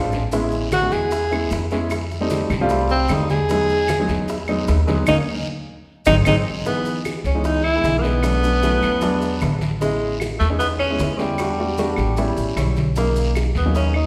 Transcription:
Already playing: upright bass A1, grand piano G#3 C4 D4 F4
0.12 high bongo, low conga, short guiro, maracas
0.32 grand piano G#3 B3 C#4 E4, high bongo, high conga, long guiro, maracas
0.52 high conga, maracas
0.72 tenor saxophone F#4, high bongo, high conga, short guiro, claves, maracas
0.82 grand piano G#3 B3 C#4 E4
0.91 upright bass E2, tenor saxophone G#4, high bongo, high conga, short guiro, maracas
1.11 high bongo, high conga, long guiro, maracas
1.31 grand piano G#3 B3 C#4 E4, high bongo, high conga, claves, maracas
1.51 upright bass F2, high bongo, low bongo, high conga, short guiro, maracas
1.70 grand piano G#3 B3 C#4 E4, high bongo, short guiro, maracas
1.90 high bongo, high conga, long guiro, claves, maracas
2.11 high bongo, high conga, maracas
2.20 grand piano G3 A3 C4 D#4
2.30 high bongo, high conga, short guiro, maracas
2.50 upright bass C2, high conga, low conga, short guiro, claves, maracas
2.61 grand piano G3 A3 C4 F4
2.69 high bongo, long guiro, maracas
2.89 tenor saxophone C4, high bongo, high conga, maracas
3.09 upright bass E2, grand piano G3 A3 C4 D#4, high bongo, low bongo, high conga, short guiro, claves, maracas
3.13 tenor saxophone D#4
3.29 tenor saxophone G#4, high bongo, high conga, short guiro, maracas
3.49 grand piano F#3 G#3 B3 D#4, high bongo, high conga, long guiro, maracas
3.69 high conga, maracas
3.88 high bongo, high conga, short guiro, claves, maracas
4.00 grand piano F#3 G#3 B3 D#4
4.08 upright bass E2, high bongo, high conga, short guiro, maracas
4.28 high bongo, high conga, long guiro, maracas
4.47 grand piano F#3 G#3 B3 D#4, high bongo, high conga, claves, maracas
4.67 upright bass D#2, high bongo, low bongo, high conga, short guiro, maracas
4.87 grand piano F#3 G#3 B3 D#4, high bongo, high conga, short guiro, maracas
5.06 upright bass D#2, grand piano A#3 C#4 D#4, tenor saxophone D#4, low bongo, high conga, long guiro, claves, maracas
6.05 upright bass G#1, grand piano F#3 G#3 C4, tenor saxophone D#4, low bongo, high conga, long guiro, claves, maracas
6.25 upright bass G#1, grand piano F#3 G#3 C4, tenor saxophone D#4, low bongo, high conga, long guiro, claves, maracas
6.65 grand piano E3 G#3 B3 D#4, tenor saxophone B3, high bongo, high conga, long guiro, maracas
6.85 high conga, maracas
7.05 high bongo, high conga, short guiro, claves, maracas
7.24 upright bass C#2, tenor saxophone C#4, high conga, short guiro, maracas
7.35 grand piano E3 G#3 B3 D#4
7.44 tenor saxophone D#4, high bongo, high conga, long guiro, maracas
7.64 tenor saxophone E4, high conga, claves
7.75 grand piano E3 G#3 B3 E4
7.83 upright bass B1, high bongo, low bongo, high conga, short guiro, maracas
7.98 tenor saxophone A#3
8.02 grand piano E3 G#3 B3 D#4, tenor saxophone B3, short guiro, maracas
8.23 grand piano F#3 A3 C#4 D4, high bongo, high conga, long guiro, claves, maracas
8.43 grand piano F#3 A3 C#4 D4, high bongo, high conga, maracas
8.63 grand piano F#3 A3 C#4 E4, high bongo, high conga, short guiro, maracas
8.82 upright bass E2, short guiro, claves, maracas
9.01 grand piano F#3 G#3 B3 D4, high bongo, high conga, long guiro, maracas
9.22 high bongo, high conga, maracas
9.41 upright bass A1, high bongo, low bongo, high conga, short guiro, claves, maracas
9.61 high bongo, high conga, short guiro, maracas
9.81 grand piano G#3 B3 C#4 E4, tenor saxophone G#3, high bongo, high conga, long guiro, maracas
10.20 high bongo, high conga, short guiro, claves, maracas
10.39 upright bass E2, tenor saxophone A3, high conga, short guiro, maracas
10.50 grand piano G#3 B3 C#4 D#4
10.59 tenor saxophone B3, high bongo, high conga, long guiro, maracas
10.79 tenor saxophone C#4, high conga, claves
10.90 grand piano G#3 B3 C#4 E4
10.99 upright bass E2, high bongo, low bongo, high conga, short guiro, maracas
11.19 tenor saxophone G3, grand piano G#3 B3 C#4 E4, short guiro, maracas
11.38 grand piano G3 B3 D4 F#4, high bongo, long guiro, claves, maracas
11.60 grand piano G3 B3 D4 F#4, high bongo
11.78 grand piano G3 B3 D4 F#4, high bongo, high conga, short guiro, maracas
11.96 upright bass A1, short guiro, claves, maracas
12.17 grand piano G3 B3 C#4 E4, high bongo, high conga, long guiro, maracas
12.36 upright bass A1, high bongo, high conga, maracas
12.56 upright bass B1, grand piano C#5, high bongo, low bongo, high conga, short guiro, claves, maracas
12.76 high bongo, high conga, short guiro, maracas
12.96 grand piano F#3 A#3 C#4 D#4, tenor saxophone A#3, high bongo, high conga, long guiro, maracas
13.16 high conga, maracas
13.35 high bongo, high conga, short guiro, claves, maracas
13.55 upright bass D#2, tenor saxophone B3, high conga, short guiro, maracas
13.66 grand piano F#3 A#3 C#4 D#4
13.75 tenor saxophone C#4, high bongo, long guiro, maracas
13.94 tenor saxophone D#4, claves

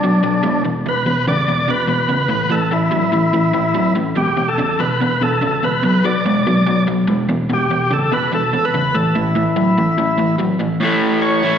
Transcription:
Already playing: tonewheel organ D4
0.03 overdriven electric guitar B2 F#3
0.23 overdriven electric guitar B2 F#3
0.43 overdriven electric guitar B2 G#3
0.65 overdriven electric guitar E2 B2
0.86 overdriven electric guitar E2 B2, tonewheel organ B4
1.06 overdriven electric guitar E2 B2
1.27 overdriven electric guitar E2 C#3, tonewheel organ D5
1.48 overdriven electric guitar E2 B2
1.68 overdriven electric guitar E2 B2, tonewheel organ B4
1.88 overdriven electric guitar E2 B2
2.09 overdriven electric guitar E2 C#3
2.29 overdriven electric guitar A2 E3
2.51 overdriven electric guitar A2 E3, tonewheel organ A4
2.72 overdriven electric guitar A2 E3, tonewheel organ E4
2.91 overdriven electric guitar A2 F#3
3.12 overdriven electric guitar A2 E3
3.33 overdriven electric guitar A2 E3
3.54 overdriven electric guitar A2 E3
3.75 overdriven electric guitar A2 F#3
3.96 overdriven electric guitar A2 E3
4.16 overdriven electric guitar E2 B2, tonewheel organ G4
4.37 overdriven electric guitar E2 B2
4.48 tonewheel organ A4
4.58 overdriven electric guitar E2 C#3
4.79 overdriven electric guitar E2 B2, tonewheel organ B4
5.01 overdriven electric guitar E2 B2, tonewheel organ B4
5.21 overdriven electric guitar E2 B2, tonewheel organ A4
5.41 overdriven electric guitar E2 C#3
5.63 overdriven electric guitar E2 B2, tonewheel organ B4
5.83 overdriven electric guitar B2 F#3, tonewheel organ B4
6.04 overdriven electric guitar B2 F#3, tonewheel organ D5
6.26 overdriven electric guitar B2 G#3, tonewheel organ D5
6.47 overdriven electric guitar B2 F#3
6.67 overdriven electric guitar B2 F#3
6.87 overdriven electric guitar B2 F#3
7.08 overdriven electric guitar B2 G#3
7.29 overdriven electric guitar E2 B2
7.50 overdriven electric guitar E2 B2, tonewheel organ G4
7.71 overdriven electric guitar E2 B2
7.91 overdriven electric guitar E2 C#3, tonewheel organ A4
8.12 overdriven electric guitar E2 B2, tonewheel organ B4
8.32 overdriven electric guitar E2 B2, tonewheel organ A4
8.53 overdriven electric guitar E2 B2
8.65 tonewheel organ B4
8.74 overdriven electric guitar E2 C#3
8.95 overdriven electric guitar A2 E3, tonewheel organ A4
9.15 overdriven electric guitar A2 E3, tonewheel organ E4
9.35 overdriven electric guitar A2 E3
9.56 overdriven electric guitar A2 F#3
9.78 overdriven electric guitar A2 E3
9.98 overdriven electric guitar A2 E3
10.18 overdriven electric guitar A2 E3
10.40 overdriven electric guitar A2 F#3
10.60 overdriven electric guitar A2 E3
10.81 overdriven electric guitar A2 E3 A3
11.22 tonewheel organ C#5
11.43 overdriven electric guitar A2 E3 A3

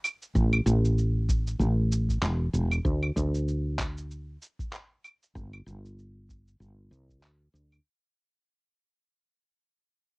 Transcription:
0.04 cabasa, claves
0.22 cabasa
0.35 fretless electric bass A1, kick, cabasa
0.53 claves
0.66 fretless electric bass A1, cabasa
0.85 cabasa
0.98 cabasa
1.29 kick, cabasa
1.47 cabasa
1.59 fretless electric bass A1, cabasa
1.92 cabasa
2.09 kick, cabasa
2.22 fretless electric bass E1, clap, cabasa
2.54 fretless electric bass E1, cabasa
2.72 cabasa, claves
2.85 fretless electric bass D2, kick, cabasa
3.03 claves
3.16 fretless electric bass D2, kick, cabasa
3.35 cabasa
3.48 cabasa
3.79 kick, clap, cabasa
3.98 cabasa
4.11 cabasa
4.42 cabasa
4.59 kick, cabasa
4.73 clap, cabasa
5.04 cabasa, claves
5.23 cabasa
5.35 fretless electric bass G1, kick, cabasa
5.53 claves
5.66 fretless electric bass G1, cabasa
5.85 cabasa
5.99 cabasa
6.29 kick, cabasa
6.48 cabasa
6.60 fretless electric bass G1, cabasa
6.91 fretless electric bass C2, cabasa
7.10 kick, cabasa
7.23 fretless electric bass D2, clap, cabasa
7.54 fretless electric bass D2, cabasa
7.72 cabasa, claves

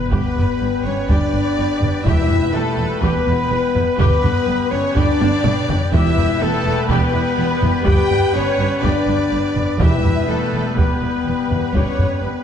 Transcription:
Already playing: trombone section G3 B3, french horn section B3, woodwind section B3 G4 B4 G5, violin section B4, flute B4, trumpet B4, viola section B4
0.11 double bass section G1, cello section G2, french horn section B3, viola section G4, violin section B4, flute B4, taiko
0.36 double bass section G1, cello section G2, viola section D4, taiko low
0.60 double bass section G1, cello section G2, viola section B3
0.84 double bass section G1, cello section G2, french horn section C#4, viola section D4, violin section C#5, flute C#5
1.09 double bass section G1, cello section G2, french horn section D4, viola section G4, flute D5, violin section D5, taiko
1.32 double bass section G1, cello section G2, viola section D4
1.57 double bass section G1, cello section G2, viola section B3
1.81 double bass section G1, cello section G2, viola section D4, taiko low
2.03 double bass section E1, cello section E2, timpani E2, french horn section E4, viola section G4 B4, trumpet B4, violin section E5, flute E5, taiko
2.29 double bass section E1, cello section E2, viola section E4, taiko low
2.53 double bass section E1, cello section E2, french horn section A3, viola section B3, violin section A4, flute A4
2.77 double bass section E1, cello section E2, viola section E4
3.01 double bass section E1, cello section E2, french horn section B3, viola section G4, flute B4, violin section B4, taiko
3.25 double bass section E1, cello section E2, viola section E4
3.50 double bass section E1, cello section E2, viola section B3
3.74 double bass section E1, cello section E2, viola section E4, taiko low
3.98 double bass section G1, cello section G2, french horn section B3, woodwind section B3 G4 B4 G5, viola section G4, flute B4, violin section B4, taiko
4.23 double bass section G1, cello section G2, viola section D4, taiko low
4.47 double bass section G1, cello section G2, viola section B3
4.71 double bass section G1, cello section G2, french horn section C#4, viola section D4, flute C#5, violin section C#5
4.94 double bass section G1, cello section G2, french horn section D4, viola section G4, violin section D5, flute D5, taiko
5.19 double bass section G1, cello section G2, viola section D4, taiko high
5.44 double bass section G1, cello section G2, viola section B3, taiko low-mid
5.68 double bass section G1, cello section G2, viola section D4, taiko low
5.93 double bass section E1, timpani E2, cello section E2, french horn section E4, viola section G4 B4, trumpet B4, violin section E5, flute E5, taiko
6.17 double bass section E1, cello section E2, viola section E4, taiko low
6.41 double bass section E1, cello section E2, french horn section A3, viola section B3, flute A4, violin section A4
6.65 double bass section E1, cello section E2, viola section E4
6.88 double bass section E1, cello section E2, french horn section B3, viola section G4, violin section B4, flute B4, taiko
7.12 double bass section E1, cello section E2, viola section E4
7.37 double bass section E1, cello section E2, viola section B3
7.60 double bass section E1, cello section E2, viola section E4, taiko low
7.84 double bass section G1, cello section G2, french horn section G4, viola section G4, flute G5, violin section G5, taiko
7.88 violin section G5
8.09 double bass section G1, cello section G2, viola section D4, taiko low
8.34 double bass section G1, cello section G2, viola section B3, french horn section C#4, violin section C#5, flute C#5
8.58 double bass section G1, cello section G2, viola section D4
8.80 double bass section G1, cello section G2, french horn section D4, viola section G4, violin section D5, flute D5, taiko
9.07 double bass section G1, cello section G2, viola section D4
9.31 double bass section G1, cello section G2, viola section B3
9.55 double bass section G1, cello section G2, viola section D4, taiko low
9.79 double bass section E1, timpani E2, cello section E2, trombone section G3 B3, woodwind section B3 G4 B4 G5, french horn section E4, viola section G4 B4, trumpet B4, violin section E5, flute E5, taiko
10.03 double bass section E1, cello section E2, viola section E4, taiko low
10.27 double bass section E1, cello section E2, french horn section A3, viola section B3, violin section A4, flute A4
10.52 double bass section E1, cello section E2, viola section E4
10.76 double bass section E1, cello section E2, french horn section B3, viola section G4, violin section B4, flute B4, taiko
11.01 double bass section E1, cello section E2, viola section E4
11.25 double bass section E1, cello section E2, viola section B3
11.49 double bass section E1, cello section E2, viola section E4, taiko low
11.73 double bass section G1, cello section G2, french horn section C#4, viola section G4, flute C#5, violin section C#5, taiko
11.98 double bass section G1, cello section G2, viola section D4, taiko low
12.22 double bass section G1, cello section G2, french horn section B3, viola section B3, flute B4, violin section B4

